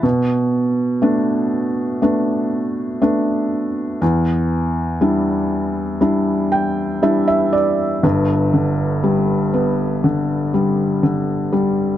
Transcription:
X:1
M:4/4
L:1/16
Q:1/4=60
K:Glyd
V:1 name="Felt piano"
z16 | z8 z2 g2 e e d2 | z16 |]
V:2 name="Felt piano"
B,,4 [A,B,D]4 [A,B,D]4 [A,B,D]4 | E,,4 [G,DE]4 [G,DE]4 [G,DE]4 | [G,,,G,,]2 D,2 G,2 B,2 D,2 G,2 D,2 G,2 |]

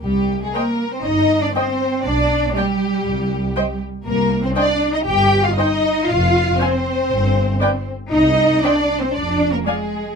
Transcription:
X:1
M:4/4
L:1/16
Q:1/4=118
K:Cm
V:1 name="Violin section"
z4 g4 z4 g4 | z4 g4 z4 g4 | z4 g4 z4 g4 | z4 a4 z4 g4 |
z4 g4 z4 a4 |]
V:2 name="Viola section"
z4 [ce]4 z4 [ce]4 | z4 d4 z4 [ce]4 | z4 [ce]4 z4 [ce]4 | z4 [cf]4 z4 [=Bd]4 |
z4 [ce]4 z4 [df]4 |]
V:3 name="Violin section"
G3 A B3 c e3 d c4 | d4 G8- G2 z2 | B3 c d3 e g3 f e4 | f4 c8- c2 z2 |
e4 d3 c d3 B A4 |]
V:4 name="Cello section"
G,3 A, B,3 C E3 D C4 | D4 G,8- G,2 z2 | B,3 C D3 E G3 F E4 | F4 C8- C2 z2 |
E4 D3 C D3 B, A,4 |]
V:5 name="Double bass section" clef=bass
C,,4 z4 G,,,4 z4 | =B,,,4 z4 C,,4 z4 | C,,4 z4 G,,,4 z4 | F,,,4 z4 G,,,4 z4 |
C,,4 z4 F,,,4 z4 |]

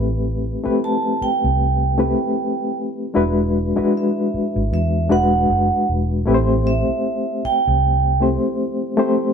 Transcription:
X:1
M:4/4
L:1/16
Q:"Swing 16ths" 1/4=77
K:Ador
V:1 name="Vibraphone"
z4 a2 g8 z2 | z4 e4 e2 f4 z2 | z2 e4 g4 z6 |]
V:2 name="Reed electric piano"
[A,CEGB]3 [A,CEGB]6- [A,CEGB] [A,CEGB]6 | [^G,DEFB]3 [G,DEFB]6- [G,DEFB] [G,DEFB]6 | [A,CEGBc]8 z2 [A,CEGc]4 [A,CEGc]2 |]
V:3 name="Fingered electric bass" clef=bass
A,,,3 z4 C,,4 z4 z | E,,,3 z4 ^G,,, E,,2 E,,,2 F,,, z E,,,2 | A,,,3 z4 C,,4 z4 z |]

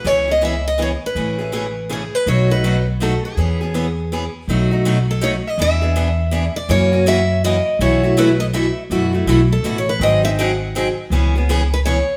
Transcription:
X:1
M:3/4
L:1/16
Q:"Swing" 1/4=163
K:Bmix
V:1 name="Steel-string acoustic guitar"
c2 d2 e2 d2 c2 B2- | B8 G2 B2 | c2 B4 z2 A2 G2- | G8- G2 z2 |
z6 A2 c2 d2 | e8- e2 =d2 | c4 e4 d4 | c4 B2 d2 e3 z |
z6 A2- (3A2 c2 B2 | d2 e2 f4 z4 | z6 B2 c4 |]
V:2 name="Steel-string acoustic guitar"
[C,E,B,CG]2 [B,CG]2 [C,E,B,CG] z3 [C,E,B,CG] z3 | [C,E,A,CG]2 [A,CG]2 [C,E,A,CG] z3 [C,E,A,CG] z3 | [B,,F,A,DF]2 [A,DF]2 [B,,F,A,DF] z3 [B,,F,A,DF] z3 | [E,B,CG]2 [B,CG]2 [E,B,CG] z3 [E,B,CG] z3 |
[B,,F,A,DF]2 [A,DF]2 [B,,F,A,DF] z3 [B,,F,A,DF] z3 | [E,B,=DG]2 [B,DG]2 [E,B,DG] z3 [E,B,DG] z3 | [C,E,^A,CF]2 [A,CF]2 [C,E,A,CF] z3 [C,E,A,CF] z3 | [B,,E,A,EF]2 [A,EF]2 [B,,E,A,EF] z3 [B,,E,A,EF] z3 |
[B,,E,A,EF]2 [A,EF]2 [B,,E,A,EF] z3 [B,,E,A,EF] z3 | [D,F,^B,DG]2 [B,DG]2 [D,F,B,DG] z3 [D,F,B,DG] z3 | [C,E,B,CG]2 [B,CG]2 [C,E,B,CG] z3 [C,E,B,CG] z3 |]
V:3 name="Upright bass" clef=bass
C,,12 | A,,,12 | B,,,12 | E,,12 |
B,,,12 | E,,12 | F,,12 | B,,,12 |
F,,4 B,,,4 A,,,4 | G,,,12 | C,,12 |]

